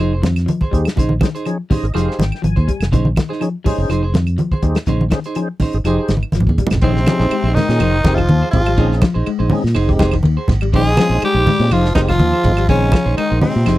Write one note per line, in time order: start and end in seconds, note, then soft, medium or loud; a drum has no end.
0.00 0.21 F1 medium
0.00 0.12 F3 medium
0.00 0.12 D#4 medium
0.00 0.12 G#4 medium
0.00 0.12 C5 medium
0.13 0.27 G#4 soft
0.13 0.26 C5 medium
0.22 0.46 F2 medium
0.22 0.36 D#3 medium
0.22 snare medium
0.22 closed hi-hat soft
0.22 high conga medium
0.36 snare soft
0.36 closed hi-hat soft
0.36 claves medium
0.46 0.61 F3 medium
0.46 closed hi-hat medium
0.46 high conga medium
0.61 0.76 G#4 soft
0.61 0.75 C5 medium
0.61 kick medium
0.61 high conga medium
0.71 0.85 D#2 medium
0.71 0.86 G3 medium
0.71 0.88 D#4 medium
0.71 0.88 G4 medium
0.71 0.88 G#4 medium
0.71 0.88 C5 medium
0.71 kick medium
0.71 closed hi-hat soft
0.85 snare medium
0.85 closed hi-hat medium
0.85 claves medium
0.96 1.20 A#1 medium
0.96 1.10 C#3 medium
0.96 1.13 D#4 medium
0.96 1.13 G#4 medium
0.96 1.13 C5 medium
0.96 muted clean electric guitar stroke medium
0.96 kick medium
0.96 closed hi-hat medium
0.96 high conga soft
0.96 low conga medium
1.09 high conga medium
1.21 1.35 D#3 medium
1.21 1.29 C#4 medium
1.21 1.30 D#4 medium
1.21 1.30 G#4 medium
1.21 1.30 C5 medium
1.21 kick medium
1.21 snare medium
1.21 closed hi-hat soft
1.21 high conga medium
1.21 claves medium
1.35 1.49 D#4 soft
1.35 1.48 G#4 medium
1.35 1.48 C5 medium
1.35 closed hi-hat medium
1.45 1.60 F3 medium
1.45 1.58 C#4 medium
1.45 1.58 D#4 medium
1.45 1.58 G#4 medium
1.45 1.58 C#5 medium
1.45 closed hi-hat medium
1.45 high conga soft
1.45 claves medium
1.70 1.84 G3 medium
1.70 1.85 C#4 medium
1.70 1.85 D#4 medium
1.70 1.86 G#4 medium
1.70 1.86 C5 medium
1.70 1.93 D#5 medium
1.70 kick medium
1.70 open hi-hat medium
1.70 high conga medium
1.70 low conga medium
1.83 1.94 G#1 medium
1.83 1.86 G#4 medium
1.83 1.87 A#4 medium
1.83 closed hi-hat medium
1.94 2.07 F1 medium
1.94 2.08 F3 medium
1.94 2.24 D#4 medium
1.94 2.07 D#4 medium
1.94 2.25 G4 medium
1.94 2.25 G#4 medium
1.94 2.08 G#4 medium
1.94 2.07 C5 medium
1.94 2.25 C5 medium
1.94 2.17 F5 medium
1.94 snare soft
1.94 closed hi-hat medium
1.94 high conga soft
1.94 claves medium
2.08 2.22 G#4 soft
2.08 2.22 C5 medium
2.08 snare soft
2.19 2.31 G#1 medium
2.19 2.33 D#3 medium
2.19 2.42 G5 medium
2.19 snare medium
2.19 closed hi-hat medium
2.19 high conga medium
2.32 snare soft
2.32 claves medium
2.42 2.55 G#1 medium
2.42 2.56 F3 medium
2.42 2.89 G#5 medium
2.42 closed hi-hat medium
2.42 high conga medium
2.56 2.67 D#2 medium
2.56 2.71 G#4 soft
2.56 2.70 C5 medium
2.56 kick medium
2.56 high conga medium
2.68 2.82 G3 medium
2.68 kick medium
2.68 closed hi-hat medium
2.80 2.91 F1 medium
2.80 snare medium
2.80 closed hi-hat soft
2.80 claves medium
2.92 3.15 A#1 loud
2.92 3.06 C#3 medium
2.92 3.07 C#4 medium
2.92 3.07 D#4 medium
2.92 3.07 G#4 medium
2.92 3.07 C5 medium
2.92 kick medium
2.92 closed hi-hat medium
2.92 high conga soft
2.92 low conga medium
3.05 high conga medium
3.16 3.31 D#3 medium
3.16 kick medium
3.16 snare medium
3.16 closed hi-hat medium
3.16 high conga medium
3.16 claves medium
3.29 3.44 D#4 soft
3.29 3.33 G#4 medium
3.29 3.43 G#4 soft
3.29 3.43 C5 medium
3.29 3.33 C5 medium
3.29 snare soft
3.41 3.55 F3 medium
3.41 3.49 C#4 medium
3.41 3.49 D#4 medium
3.41 3.49 G#4 medium
3.41 3.49 C#5 medium
3.41 closed hi-hat medium
3.41 high conga soft
3.41 claves medium
3.64 3.79 G3 medium
3.64 3.80 C#4 medium
3.64 3.90 C#4 medium
3.64 3.80 D#4 medium
3.64 3.91 D#4 medium
3.64 3.81 G#4 medium
3.64 3.90 G#4 medium
3.64 3.81 C5 medium
3.64 3.91 C5 medium
3.64 muted fingered electric bass stroke soft
3.64 kick medium
3.64 open hi-hat medium
3.64 low conga medium
3.78 3.89 G1 medium
3.89 4.12 F1 medium
3.89 4.04 F3 medium
3.89 4.03 D#4 medium
3.89 4.03 G#4 medium
3.89 4.02 C5 medium
3.89 closed hi-hat medium
3.89 high conga soft
3.89 claves medium
4.03 4.17 G#4 soft
4.03 4.17 C5 medium
4.14 4.37 F2 medium
4.14 4.28 D#3 medium
4.14 snare medium
4.14 closed hi-hat soft
4.14 high conga medium
4.27 closed hi-hat soft
4.27 claves medium
4.38 4.52 F3 medium
4.38 closed hi-hat medium
4.38 high conga medium
4.52 4.66 G#4 soft
4.52 4.65 C5 medium
4.52 kick medium
4.52 high conga medium
4.62 4.75 D#2 medium
4.62 4.77 G3 medium
4.62 4.79 D#4 medium
4.62 4.78 G4 medium
4.62 4.79 G#4 medium
4.62 4.79 C5 medium
4.62 kick medium
4.62 closed hi-hat soft
4.75 snare medium
4.75 closed hi-hat soft
4.75 claves medium
4.86 5.10 A#1 medium
4.86 5.01 C#3 medium
4.86 5.03 C#4 medium
4.86 5.03 D#4 medium
4.86 5.03 G#4 medium
4.86 5.03 C5 medium
4.86 kick medium
4.86 closed hi-hat medium
4.86 high conga soft
4.86 low conga medium
5.01 high conga medium
5.11 5.25 D#3 medium
5.11 5.20 C#4 medium
5.11 5.19 D#4 medium
5.11 5.20 G#4 medium
5.11 5.20 C5 medium
5.11 kick medium
5.11 snare medium
5.11 closed hi-hat soft
5.11 high conga medium
5.11 claves medium
5.24 5.40 D#4 soft
5.24 5.39 G#4 soft
5.24 5.39 C5 medium
5.24 closed hi-hat soft
5.35 5.50 F3 medium
5.35 5.48 C#4 medium
5.35 5.48 D#4 medium
5.35 5.49 G#4 medium
5.35 5.49 C5 medium
5.35 closed hi-hat medium
5.35 high conga soft
5.35 claves medium
5.60 5.76 C#4 medium
5.60 5.76 D#4 medium
5.60 5.76 G#4 medium
5.60 5.77 C5 medium
5.60 muted clean electric guitar stroke medium
5.60 kick medium
5.60 open hi-hat medium
5.60 high conga medium
5.60 low conga medium
5.73 5.84 G#1 medium
5.73 5.78 G#4 medium
5.73 5.78 C5 medium
5.73 closed hi-hat medium
5.84 5.97 F1 medium
5.84 5.99 F3 medium
5.84 6.16 D#4 medium
5.84 5.99 D#4 medium
5.84 6.16 G4 medium
5.84 6.16 G#4 medium
5.84 5.99 G#4 medium
5.84 6.16 C5 loud
5.84 5.97 C5 medium
5.84 closed hi-hat medium
5.84 high conga soft
5.84 claves medium
5.98 6.13 G#4 soft
5.98 6.12 C5 medium
6.08 6.22 G#1 medium
6.08 6.24 D#3 medium
6.08 snare medium
6.08 closed hi-hat soft
6.08 high conga medium
6.17 high conga medium
6.23 claves medium
6.32 6.46 G#1 medium
6.32 6.49 F3 medium
6.32 snare soft
6.32 closed hi-hat medium
6.32 high conga medium
6.40 low conga medium
6.47 6.58 D#2 medium
6.47 6.62 G#4 soft
6.47 kick medium
6.47 low conga medium
6.58 6.73 G3 medium
6.58 kick medium
6.58 closed hi-hat medium
6.58 low conga medium
6.67 closed hi-hat medium
6.67 low conga loud
6.71 6.81 F1 medium
6.71 snare medium
6.71 low conga medium
6.71 claves medium
6.81 7.05 A#1 medium
6.81 7.52 C3 medium
6.81 7.55 C3 medium
6.81 6.98 D#3 medium
6.81 7.56 C4 loud
6.81 6.98 C#4 medium
6.81 6.91 C#4 medium
6.81 6.98 D#4 medium
6.81 6.91 D#4 medium
6.81 6.91 G#4 medium
6.81 6.98 G#4 medium
6.81 6.91 C5 medium
6.81 6.99 C5 medium
6.81 kick medium
6.81 ride bell medium
6.81 high conga soft
6.96 snare soft
7.06 7.22 F3 medium
7.06 7.26 C#4 medium
7.06 7.26 D#4 medium
7.06 7.26 G#4 medium
7.06 7.27 C5 medium
7.06 snare medium
7.06 ride bell medium
7.06 high conga medium
7.06 claves medium
7.20 7.29 A#1 medium
7.20 7.35 D#4 soft
7.20 7.34 G#4 medium
7.20 7.34 C5 medium
7.20 snare soft
7.31 7.46 G#3 medium
7.31 ride bell medium
7.31 high conga soft
7.31 claves medium
7.44 7.55 A#1 loud
7.44 7.60 D#4 soft
7.44 7.59 G#4 medium
7.44 7.59 C5 medium
7.53 8.16 D#3 medium
7.53 8.19 D#3 medium
7.53 7.70 G#3 medium
7.53 8.16 D#4 loud
7.53 snare soft
7.53 open hi-hat medium
7.53 high conga medium
7.53 low conga medium
7.69 7.80 A#2 loud
7.69 7.79 C#4 medium
7.69 7.79 D#4 medium
7.69 7.80 G#4 medium
7.69 7.80 D#5 medium
7.69 snare soft
7.80 8.03 F1 loud
7.80 7.94 F3 medium
7.80 7.96 D#4 medium
7.80 7.96 G#4 medium
7.80 7.96 C5 medium
7.80 ride bell medium
7.80 high conga soft
7.80 claves medium
8.04 8.28 F1 loud
8.04 8.20 C4 medium
8.04 8.20 D#4 medium
8.04 8.21 G4 medium
8.04 8.21 G#4 medium
8.04 8.21 C5 medium
8.04 kick medium
8.04 snare medium
8.04 ride bell medium
8.04 high conga loud
8.14 8.24 D#3 medium
8.14 8.49 F3 loud
8.14 8.51 F3 loud
8.14 8.50 F4 loud
8.14 kick medium
8.14 claves medium
8.28 8.42 D#2 medium
8.28 8.44 D#3 medium
8.28 ride bell medium
8.28 high conga medium
8.42 8.57 G#4 soft
8.42 8.56 C5 medium
8.51 8.77 G#1 medium
8.51 8.97 F3 medium
8.51 8.98 F3 medium
8.51 8.62 C4 medium
8.51 8.98 F4 loud
8.51 8.62 G4 medium
8.51 kick medium
8.51 ride bell medium
8.51 low conga medium
8.55 8.62 D#4 medium
8.55 8.63 G#4 medium
8.66 8.73 G3 medium
8.66 ride bell medium
8.66 claves medium
8.77 9.01 A#1 loud
8.77 8.92 D#3 loud
8.77 9.01 C4 medium
8.77 8.93 C#4 medium
8.77 9.01 C#4 medium
8.77 8.93 D#4 medium
8.77 9.01 D#4 medium
8.77 8.93 G#4 medium
8.77 9.01 G#4 medium
8.77 8.94 C5 medium
8.77 kick loud
8.77 ride bell soft
8.77 high conga soft
8.92 snare soft
9.02 9.17 F3 medium
9.02 kick medium
9.02 snare medium
9.02 ride bell medium
9.02 high conga medium
9.02 claves medium
9.14 9.26 A#1 medium
9.14 9.29 D#4 soft
9.14 9.29 G#4 medium
9.14 9.29 C5 medium
9.26 9.41 G#3 medium
9.26 muted fingered electric bass stroke soft
9.26 ride bell medium
9.26 high conga soft
9.26 claves medium
9.39 9.51 A#1 loud
9.39 9.54 D#4 medium
9.39 9.54 G#4 medium
9.39 9.53 C5 medium
9.50 9.65 G#3 medium
9.50 9.64 C4 medium
9.50 9.63 C#4 medium
9.50 9.64 D#4 medium
9.50 9.64 G#4 loud
9.50 open hi-hat medium
9.50 high conga medium
9.50 low conga medium
9.64 9.75 A#2 medium
9.64 snare soft
9.75 9.99 F1 loud
9.75 9.90 D#4 medium
9.75 9.91 G#4 medium
9.75 9.91 C5 medium
9.75 muted clean electric guitar stroke medium
9.75 ride bell medium
9.75 high conga soft
9.75 claves medium
9.87 10.14 G#3 medium
9.87 10.15 C4 medium
9.87 10.15 D#4 medium
9.87 10.15 G4 loud
9.87 kick medium
9.99 10.23 F1 loud
9.99 10.15 D#4 medium
9.99 10.15 G#4 medium
9.99 10.16 C5 medium
9.99 kick medium
9.99 snare medium
9.99 ride bell medium
9.99 high conga medium
10.12 10.20 D#3 medium
10.12 kick medium
10.12 ride bell medium
10.12 claves medium
10.23 10.37 D#2 medium
10.23 10.38 D#3 medium
10.23 ride bell medium
10.23 high conga loud
10.37 10.52 G#4 medium
10.37 10.51 C5 medium
10.48 10.72 G#1 medium
10.48 kick medium
10.48 snare soft
10.48 ride bell medium
10.48 low conga loud
10.61 10.69 G3 medium
10.61 ride bell medium
10.61 claves medium
10.73 10.96 A#1 loud
10.73 10.87 D#3 loud
10.73 10.82 G#3 medium
10.73 11.20 G#3 loud
10.73 10.82 C4 medium
10.73 10.88 C#4 medium
10.73 10.82 C#4 medium
10.73 10.89 D#4 medium
10.73 10.83 D#4 loud
10.73 10.89 G#4 medium
10.73 11.20 G#4 loud
10.73 10.89 C5 medium
10.73 kick loud
10.73 ride bell medium
10.73 high conga soft
10.97 11.13 F3 medium
10.97 11.17 G#3 medium
10.97 11.17 C4 medium
10.97 11.18 C#4 medium
10.97 11.17 F4 medium
10.97 snare medium
10.97 ride bell medium
10.97 high conga loud
10.97 claves medium
11.10 11.21 A#1 medium
11.10 11.26 D#4 soft
11.10 11.25 G#4 soft
11.10 11.25 C5 medium
11.22 11.68 G3 medium
11.22 11.72 G3 medium
11.22 11.37 G#3 medium
11.22 11.74 G4 loud
11.22 muted fingered electric bass stroke soft
11.22 ride bell medium
11.22 high conga soft
11.22 claves medium
11.34 11.45 A#1 medium
11.34 11.50 D#4 soft
11.34 11.50 G#4 medium
11.34 11.49 C5 medium
11.47 11.61 G#3 medium
11.47 open hi-hat medium
11.47 high conga loud
11.47 low conga medium
11.60 11.70 A#2 medium
11.60 11.70 G#3 medium
11.60 11.71 C4 medium
11.60 11.71 C#4 medium
11.60 11.71 F4 medium
11.71 11.94 F1 medium
11.71 11.93 F3 medium
11.71 11.96 F3 medium
11.71 11.86 F3 medium
11.71 11.87 D#4 medium
11.71 11.95 F4 loud
11.71 11.87 G#4 medium
11.71 11.87 C5 medium
11.71 ride bell medium
11.71 high conga soft
11.71 claves medium
11.85 snare soft
11.94 12.18 F1 medium
11.94 12.00 D#3 medium
11.94 12.03 D#3 medium
11.94 12.11 G#3 medium
11.94 12.11 C4 medium
11.94 12.10 D#4 medium
11.94 12.01 D#4 medium
11.94 12.11 D#4 medium
11.94 12.11 G4 medium
11.94 12.11 G#4 medium
11.94 12.11 C5 medium
11.94 kick medium
11.94 snare medium
11.94 ride bell medium
11.94 high conga medium
12.08 12.15 D#3 medium
12.08 12.65 F3 medium
12.08 12.65 F4 loud
12.08 kick medium
12.08 snare soft
12.08 claves medium
12.19 12.32 D#2 medium
12.19 12.33 D#3 medium
12.19 ride bell medium
12.19 high conga loud
12.33 12.48 G#4 soft
12.33 12.47 C5 medium
12.44 12.67 G#1 medium
12.44 12.53 G#3 medium
12.44 12.52 C4 medium
12.44 12.53 D#4 medium
12.44 12.53 F4 medium
12.44 kick medium
12.44 ride bell medium
12.44 low conga medium
12.57 12.64 G3 medium
12.57 ride bell medium
12.57 claves medium
12.68 12.92 A#1 medium
12.68 13.14 C#3 medium
12.68 12.83 D#3 medium
12.68 12.92 G#3 medium
12.68 12.92 C4 medium
12.68 12.84 C#4 medium
12.68 13.14 C#4 loud
12.68 12.92 C#4 medium
12.68 12.92 D#4 medium
12.68 12.84 G#4 medium
12.68 12.85 C5 medium
12.68 muted clean electric guitar stroke medium
12.68 kick medium
12.68 ride bell medium
12.68 high conga soft
12.92 13.07 F3 medium
12.92 kick medium
12.92 snare medium
12.92 ride bell medium
12.92 high conga loud
12.92 claves medium
13.05 13.17 A#1 medium
13.05 13.20 D#4 soft
13.05 13.20 G#4 soft
13.05 13.20 C5 medium
13.17 13.40 D#3 medium
13.17 13.41 D#3 medium
13.17 13.31 G#3 medium
13.17 13.40 D#4 medium
13.17 ride bell medium
13.17 high conga soft
13.17 claves medium
13.30 13.42 A#1 medium
13.30 13.45 D#4 soft
13.30 13.44 G#4 medium
13.30 13.44 C5 medium
13.41 13.78 C3 medium
13.41 13.54 G#3 medium
13.41 13.56 G#3 medium
13.41 13.78 C4 medium
13.41 13.54 C4 medium
13.41 13.54 C#4 medium
13.41 13.54 D#4 medium
13.41 open hi-hat medium
13.41 high conga medium
13.41 low conga medium
13.56 13.66 A#2 medium
13.66 13.78 F1 medium
13.66 13.78 F3 medium
13.66 13.78 D#4 medium
13.66 13.78 G#4 medium
13.66 13.78 C5 medium
13.66 snare soft
13.66 ride bell medium
13.66 high conga soft
13.66 claves medium